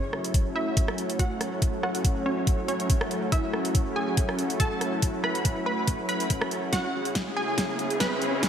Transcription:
Already playing: supersaw synth F#3 A3 C#4 E4, synth pluck C#4 C#5, analog synth pad C#4 F#4 C#5 E5
0.13 cross-stick
0.24 closed hi-hat
0.34 kick, closed hi-hat
0.44 analog synth pad F#5
0.56 synth pluck E4 E5
0.77 kick, closed hi-hat
0.88 cross-stick
0.98 closed hi-hat
1.10 closed hi-hat
1.19 synth pluck F#4 F#5, kick, closed hi-hat
1.41 cross-stick, closed hi-hat
1.62 kick, closed hi-hat
1.83 synth pluck F#4 F#5, cross-stick
1.95 closed hi-hat
2.05 kick, closed hi-hat
2.26 synth pluck C#4 C#5
2.47 kick, closed hi-hat
2.68 synth pluck C#4 C#5, closed hi-hat
2.80 closed hi-hat
2.90 kick, closed hi-hat
3.01 cross-stick
3.11 closed hi-hat
3.32 synth pluck E4 E5, kick, closed hi-hat
3.53 cross-stick
3.65 closed hi-hat
3.75 kick, closed hi-hat
3.96 synth pluck G#4 G#5
4.17 kick, closed hi-hat
4.29 cross-stick
4.39 closed hi-hat
4.50 closed hi-hat
4.60 synth pluck A4 A5, kick, closed hi-hat
4.81 cross-stick, closed hi-hat
5.02 kick, closed hi-hat
5.24 synth pluck B4 B5, cross-stick
5.35 closed hi-hat
5.45 kick, closed hi-hat
5.66 synth pluck B4 B5
5.88 kick, closed hi-hat
6.09 synth pluck B4 B5, closed hi-hat
6.20 closed hi-hat
6.30 kick, closed hi-hat
6.41 cross-stick
6.51 closed hi-hat
6.73 supersaw synth C#3 G#4, analog synth pad C#4, synth pluck F#4 F#5, kick, snare, closed hi-hat, riser
6.78 analog synth pad G#4
7.05 closed hi-hat
7.15 kick, snare, closed hi-hat
7.29 analog synth pad C#5
7.36 synth pluck G#4 G#5, analog synth pad E5
7.58 kick, snare, closed hi-hat
7.79 closed hi-hat
7.90 closed hi-hat
8.00 synth pluck B4 B5, kick, snare, closed hi-hat
8.22 closed hi-hat
8.43 kick, snare, closed hi-hat

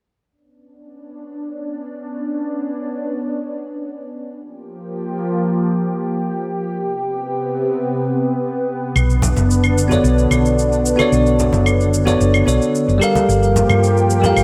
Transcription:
0.31 analog synth pad B3 C#4 D4
4.36 analog synth pad F3 A#3 G4
6.80 analog synth pad C3 B3
8.96 fingered electric bass B1, analog synth pad D3 D4, claves, shaker
9.10 shaker
9.22 low conga, shaker
9.36 fingered electric bass F#1, high conga, shaker
9.51 shaker
9.64 claves, shaker
9.78 shaker
9.88 tine electric piano B3 F#4 A4, low conga, shaker
9.92 tine electric piano C#5 D5
10.04 fingered electric bass B1, shaker
10.18 shaker
10.31 fingered electric bass B1, high conga, claves, shaker
10.46 shaker
10.59 shaker
10.73 shaker
10.86 shaker
10.96 tine electric piano B3 F#4 A4, high conga, claves, shaker
11.00 tine electric piano C#5 D5
11.12 fingered electric bass B1, shaker
11.26 shaker
11.39 low conga, shaker
11.53 fingered electric bass F#1, high conga, shaker
11.66 claves, shaker
11.81 shaker
11.94 shaker
12.05 tine electric piano B3 F#4 A4 C#5 D5, low conga, shaker
12.20 fingered electric bass F#1, shaker
12.34 claves, shaker
12.46 fingered electric bass B1, tine electric piano B3 F#4 A4 C#5 D5, high conga, shaker
12.62 shaker
12.75 shaker
12.88 fingered electric bass F#1, shaker
12.98 analog synth pad F3 A#3 G4, tine electric piano G3 G4 A4, claves
13.02 tine electric piano A#4 F5, shaker
13.15 high conga, shaker
13.29 fingered electric bass G1, shaker
13.43 shaker
13.56 low conga, shaker
13.69 fingered electric bass G2, high conga, claves, shaker
13.84 shaker
13.97 shaker
14.10 shaker
14.20 tine electric piano G3 G4 A4, low conga, shaker
14.25 tine electric piano A#4 F5
14.36 fingered electric bass G1, claves, shaker

